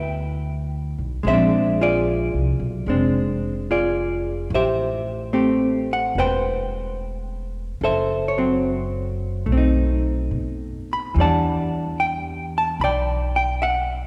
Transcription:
Already playing: upright bass D2, hollow-body jazz guitar G3 E4 B4 E5 G5
0.98 upright bass B1
1.23 upright bass A#1, hollow-body jazz guitar G#3 G#4 C5
1.28 hollow-body jazz guitar C4 E5
1.34 hollow-body jazz guitar D4
1.81 hollow-body jazz guitar F4 G#4 D5
2.34 upright bass C2
2.60 upright bass B1
2.86 upright bass F1, hollow-body jazz guitar G#3 C4 D4
3.71 hollow-body jazz guitar F4 G#4 D5
4.50 upright bass A1
4.54 hollow-body jazz guitar G4 C5 E5
5.33 hollow-body jazz guitar A3 C4 G4
5.93 hollow-body jazz guitar F#5
6.15 upright bass E1, hollow-body jazz guitar B4 C5
6.20 hollow-body jazz guitar G5
7.81 upright bass F#1, hollow-body jazz guitar A4 C5 E5
8.28 hollow-body jazz guitar C#5
8.38 hollow-body jazz guitar F#3 C4
9.46 upright bass B1, hollow-body jazz guitar A3
9.52 hollow-body jazz guitar C4
9.57 hollow-body jazz guitar D#4
10.31 upright bass B2
10.93 hollow-body jazz guitar B5
11.14 upright bass E2, hollow-body jazz guitar E3 G3
11.20 hollow-body jazz guitar D4 D5 F#5 A5
12.00 hollow-body jazz guitar G5
12.58 hollow-body jazz guitar A5
12.80 upright bass B1, hollow-body jazz guitar B5
12.84 hollow-body jazz guitar D5 G5
13.36 hollow-body jazz guitar G5
13.62 hollow-body jazz guitar E5 F#5

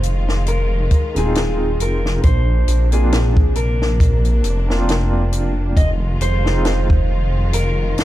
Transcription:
Already playing: detuned saw bass F1, string section D#3 G#3 F4, clean electric guitar C5
0.03 closed hi-hat
0.29 snare
0.47 clean electric guitar A#4, closed hi-hat
0.91 kick, closed hi-hat
1.15 detuned saw bass D#1, felt piano G#3 C4 D#4 F4, clean electric guitar G#4, closed hi-hat
1.35 snare, closed hi-hat
1.80 detuned saw bass F1, clean electric guitar A#4, closed hi-hat
2.06 snare
2.23 detuned saw bass A#1, string section C3 A#3 D4, clean electric guitar C5, kick, closed hi-hat
2.68 detuned saw bass A#1, closed hi-hat
2.92 felt piano A#3 C4 D4 F4, clean electric guitar G#4, closed hi-hat
3.12 snare, closed hi-hat
3.37 kick
3.55 clean electric guitar A#4, closed hi-hat
3.82 snare
4.00 kick, closed hi-hat
4.25 closed hi-hat
4.44 detuned saw bass F1, closed hi-hat
4.67 felt piano A#3 C4 D4 F4, snare
4.89 snare, closed hi-hat
5.33 closed hi-hat
5.77 detuned saw bass F1, string section D#3 G#3 F4, clean electric guitar D#5, kick, closed hi-hat
6.20 detuned saw bass F1, clean electric guitar C5, closed hi-hat
6.44 felt piano G#3 C4 D#4 F4, snare
6.65 snare, closed hi-hat
6.90 kick
7.53 clean electric guitar A#4, closed hi-hat
7.98 snare, closed hi-hat

